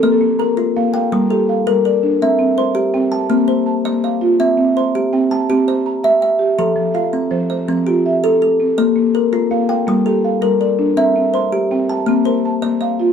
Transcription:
<<
  \new Staff \with { instrumentName = "Kalimba" } { \time 12/8 \key c \mixolydian \tempo 4. = 110 << { <a' d''>4 bes'4. g''4 a'4. bes'4 | e''4 c''4. a''4 c''4. d''4 | e''4 c''4. a''4 d''4. e''4 | a'4 f'4. d''4 g'4. a'4 |
d''4 bes'4. g''4 a'4. bes'4 | e''4 c''4. a''4 c''4. d''4 | } \\ { bes4 r8 f'4 r8 g4 r8 bes'4 r8 | c'4 r8 g'4 r8 bes4 r8 d''4 r8 | c'4 r8 g'4 r8 g'4 r8 e''4 r8 | f4 r8 c'4 r8 c'4 r8 a'4 r8 |
bes4 r8 f'4 r8 g4 r8 bes'4 r8 | c'4 r8 g'4 r8 bes4 r8 d''4 r8 | } >> }
  \new Staff \with { instrumentName = "Marimba" } { \time 12/8 \key c \mixolydian << { <a' bes'>16 a'8 r16 bes''4 f''8 f''4 g'8 f''4 d''4~ | d''8 r8 c'''4 g''8 g''4. a''4 f''4~ | f''8 r8 c'''4 g''8 g''4 c''8 bes''4 g''4~ | g''8 r8 f''4 c''8 c''4 f'8 e''4. r8 |
r2 f''8 f''4 g'8 f''4 d''4~ | d''8 r8 c'''4 g''8 g''4 bes'8 a''4 f''4 | } \\ { c'8 bes4 r8 bes4 bes8 r4 g4 d'8~ | d'8 c'4 r8 c'4 c'8 r4 bes4 f'8~ | f'8 c'4 r8 c'4 c'4 r8 e''4 g'8~ | g'8 f4 r8 f4 f4 r8 a'4 c'8~ |
c'8 bes4 r8 bes4 bes8 r4 g4 d'8~ | d'8 c'4 r8 c'4 c'8 r4 bes4 f'8 | } >> }
>>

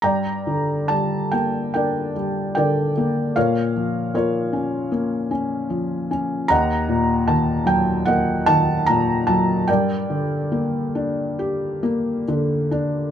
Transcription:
<<
  \new Staff \with { instrumentName = "Felt piano" } { \time 4/4 \key ees \lydian \tempo 4 = 75 << { bes''4 a''8 g''8 g''4 g''4 | f''4 des''2~ des''8 r8 | bes''4 a''8 g''8 ges''8 a''8 bes''8 a''8 | g''2. r4 | } \\ { <d'' g''>2 <bes' d''>4 <bes' d''>4 | <bes' des''>4 <f' bes'>2~ <f' bes'>8 r8 | <ees'' ges''>2 <bes' ees''>2 | <bes' d''>2. r4 | } >> }
  \new Staff \with { instrumentName = "Felt piano" } { \clef bass \time 4/4 \key ees \lydian g,8 d8 g8 bes8 d'8 g8 d8 bes8 | bes,8 f8 bes8 des'8 bes8 des'8 f8 des'8 | ees,8 bes,8 ees8 ges8 bes8 ees8 bes,8 ges8 | g,8 d8 bes8 d'8 g'8 bes8 d8 d'8 | }
>>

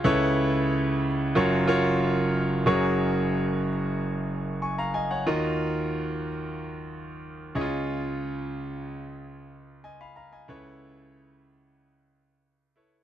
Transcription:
<<
  \new Staff \with { instrumentName = "Grand piano" } { \time 4/4 \key fis \major \tempo 4 = 92 << { r1 | r2. <gis'' cis'''>16 <eis'' ais''>16 <dis'' gis''>16 <cis'' fis''>16~ | <cis'' fis''>16 r2. r8. | r2. <dis'' gis''>16 <eis'' b''>16 <eis'' ais''>16 <dis'' gis''>16~ |
<dis'' gis''>16 r2. r8. | } \\ { <e' a' b' cis''>4. r8 <eis' fis' ais' cis''>8 <eis' fis' ais' cis''>4 r8 | <fis' gis' ais' cis''>4. r2 r8 | <eis' fis' ais' dis''>4. r2 <e' eis' gis' cis'' dis''>8~ | <e' eis' gis' cis'' dis''>4 r2. |
<e' a' b' cis''>4. r2 <e' a' b' cis''>8 | } >> }
  \new Staff \with { instrumentName = "Grand piano" } { \clef bass \time 4/4 \key fis \major <cis, cis>2 <fis,, fis,>2 | <fis,, fis,>1 | <dis, dis>2.~ <dis, dis>8 <cis, cis>8~ | <cis, cis>2.~ <cis, cis>8 r8 |
<cis, cis>1 | }
>>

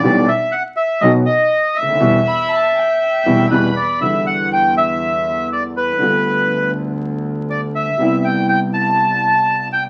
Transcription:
<<
  \new Staff \with { instrumentName = "Violin section" } { \time 4/4 \key e \minor \tempo 4 = 121 r1 | r8 b''8 a''8 g''8 g''4 b''4 | r1 | r1 |
r1 | }
  \new Staff \with { instrumentName = "Bandoneon" } { \time 4/4 \key e \minor d''8 e''8 fis''8 e''8 dis''8 dis''4 e''8~ | e''2. b'8 d''8 | e''8 fis''8 g''8 e''4. d''8 b'8~ | b'4. r4. d''8 e''8~ |
e''8 g''8 g''8 a''2 g''8 | }
  \new Staff \with { instrumentName = "Grand piano" } { \clef bass \time 4/4 \key e \minor <b,, b, e g b g'>8 r4. <b,, b, dis fis b fis'>8 r4 r32 cis,32 d,32 dis,32 | <b, e g>8 r2 <b, e g>8 <b, e g>8 r8 | <e, d e g b e'>1 | <d, d g b f'>1 |
<c, c g b e'>1 | }
  \new Staff \with { instrumentName = "Double bass" } { \clef bass \time 4/4 \key e \minor b,,8 r4. b,,8 r4 d,8 | e,8 r2 e,8 e,8 r8 | e,1 | d,1 |
c,1 | }
>>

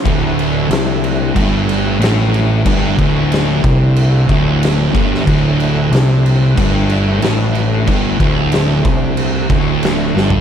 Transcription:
<<
  \new Staff \with { instrumentName = "Tonewheel organ" } { \time 4/4 \key c \mixolydian \tempo 4 = 92 <d a e'>1~ | <d a e'>1~ | <d a e'>1~ | <d a e'>1 | }
  \new Staff \with { instrumentName = "Distorted electric guitar" } { \clef bass \time 4/4 \key c \mixolydian d,4 c4 g,4 a,4 | g,8 d,4 c4 d,4 g,8 | d,4 c4 g,4 a,4 | g,8 d,4 c4 d,4 g,8 | }
  \new Staff \with { instrumentName = "Distorted electric guitar" } { \clef bass \time 4/4 \key c \mixolydian d,4 c4 g,4 a,4 | g,8 d,4 c4 d,4 g,8 | d,4 c4 g,4 a,4 | g,8 d,4 c4 d,4 g,8 | }
  \new Staff \with { instrumentName = "Picked electric bass" } { \clef bass \time 4/4 \key c \mixolydian d,,4 c,4 g,,4 a,,4 | g,,8 d,,4 c,4 d,,4 g,,8 | d,,4 c,4 g,,4 a,,4 | g,,8 d,,4 c,4 d,,4 g,,8 | }
  \new DrumStaff \with { instrumentName = "Drums" } \drummode { \time 4/4 <cymc bd>8 cymc8 <cymc sn>8 cymc8 <cymc bd>8 cymc8 <cymc sn>8 cymc8 | <cymc bd>8 <cymc bd>8 <cymc sn>8 <cymc bd>8 cymc8 <cymc bd>8 <cymc sn>8 <cymc bd>16 sn16 | <cymc bd>8 cymc8 <cymc sn>8 cymc8 <cymc bd>8 cymc8 <cymc sn>8 cymc8 | <cymc bd>8 <cymc bd>8 <cymc sn>8 <cymc bd>8 cymc8 <cymc bd>8 <cymc sn>8 sn16 tomfh16 | }
>>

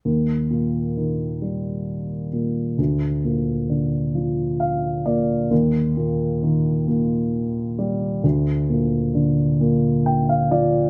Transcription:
<<
  \new Staff \with { instrumentName = "Upright piano" } { \time 6/8 \key ees \major \tempo 4. = 44 r2. | r2 f''8 d''8 | r2. | r2 g''16 f''16 d''8 | }
  \new Staff \with { instrumentName = "Upright piano" } { \clef bass \time 6/8 \key ees \major ees,8 bes,8 ees8 g4 bes,8 | d,8 bes,8 d8 f4 bes,8 | ees,8 bes,8 ees8 bes,4 g8 | d,8 bes,8 d8 bes,4 f8 | }
>>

